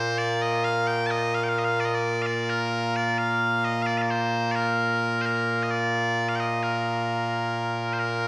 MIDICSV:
0, 0, Header, 1, 2, 480
1, 0, Start_track
1, 0, Key_signature, -2, "major"
1, 0, Tempo, 459770
1, 1150, Time_signature, 6, 3, 24, 8
1, 8641, End_track
2, 0, Start_track
2, 0, Title_t, "Bagpipes"
2, 0, Program_c, 0, 109
2, 0, Note_on_c, 0, 46, 89
2, 0, Note_on_c, 0, 58, 89
2, 0, Note_on_c, 0, 72, 105
2, 189, Note_off_c, 0, 72, 0
2, 189, Note_on_c, 0, 74, 95
2, 438, Note_off_c, 0, 74, 0
2, 438, Note_on_c, 0, 75, 107
2, 672, Note_off_c, 0, 75, 0
2, 672, Note_on_c, 0, 77, 101
2, 910, Note_off_c, 0, 77, 0
2, 910, Note_on_c, 0, 79, 103
2, 1111, Note_off_c, 0, 79, 0
2, 1111, Note_on_c, 0, 81, 103
2, 1156, Note_off_c, 0, 81, 0
2, 1156, Note_on_c, 0, 75, 103
2, 1406, Note_off_c, 0, 75, 0
2, 1406, Note_on_c, 0, 77, 99
2, 1499, Note_off_c, 0, 77, 0
2, 1499, Note_on_c, 0, 79, 72
2, 1553, Note_off_c, 0, 79, 0
2, 1553, Note_on_c, 0, 77, 100
2, 1656, Note_off_c, 0, 77, 0
2, 1656, Note_on_c, 0, 75, 75
2, 1717, Note_off_c, 0, 75, 0
2, 1717, Note_on_c, 0, 77, 99
2, 1882, Note_off_c, 0, 77, 0
2, 1882, Note_on_c, 0, 74, 101
2, 1934, Note_off_c, 0, 74, 0
2, 1934, Note_on_c, 0, 75, 88
2, 2034, Note_off_c, 0, 75, 0
2, 2034, Note_on_c, 0, 74, 96
2, 2318, Note_off_c, 0, 74, 0
2, 2318, Note_on_c, 0, 77, 91
2, 2364, Note_off_c, 0, 77, 0
2, 2364, Note_on_c, 0, 74, 91
2, 2604, Note_off_c, 0, 74, 0
2, 2604, Note_on_c, 0, 70, 101
2, 3091, Note_off_c, 0, 70, 0
2, 3091, Note_on_c, 0, 74, 91
2, 3323, Note_off_c, 0, 74, 0
2, 3323, Note_on_c, 0, 77, 100
2, 3807, Note_off_c, 0, 77, 0
2, 3807, Note_on_c, 0, 75, 96
2, 3991, Note_off_c, 0, 75, 0
2, 3991, Note_on_c, 0, 77, 99
2, 4034, Note_off_c, 0, 77, 0
2, 4034, Note_on_c, 0, 74, 99
2, 4153, Note_off_c, 0, 74, 0
2, 4153, Note_on_c, 0, 77, 67
2, 4194, Note_off_c, 0, 77, 0
2, 4194, Note_on_c, 0, 74, 67
2, 4286, Note_off_c, 0, 74, 0
2, 4286, Note_on_c, 0, 72, 85
2, 4711, Note_off_c, 0, 72, 0
2, 4711, Note_on_c, 0, 74, 95
2, 4753, Note_off_c, 0, 74, 0
2, 4753, Note_on_c, 0, 70, 95
2, 5441, Note_off_c, 0, 70, 0
2, 5441, Note_on_c, 0, 72, 95
2, 5485, Note_off_c, 0, 72, 0
2, 5485, Note_on_c, 0, 70, 95
2, 5877, Note_off_c, 0, 70, 0
2, 5877, Note_on_c, 0, 75, 70
2, 5959, Note_off_c, 0, 75, 0
2, 5959, Note_on_c, 0, 74, 90
2, 6565, Note_off_c, 0, 74, 0
2, 6565, Note_on_c, 0, 77, 92
2, 6634, Note_off_c, 0, 77, 0
2, 6634, Note_on_c, 0, 79, 89
2, 6681, Note_off_c, 0, 79, 0
2, 6681, Note_on_c, 0, 75, 89
2, 6921, Note_off_c, 0, 75, 0
2, 6921, Note_on_c, 0, 70, 78
2, 8279, Note_off_c, 0, 70, 0
2, 8279, Note_on_c, 0, 72, 64
2, 8343, Note_off_c, 0, 72, 0
2, 8343, Note_on_c, 0, 70, 95
2, 8641, Note_off_c, 0, 46, 0
2, 8641, Note_off_c, 0, 58, 0
2, 8641, Note_off_c, 0, 70, 0
2, 8641, End_track
0, 0, End_of_file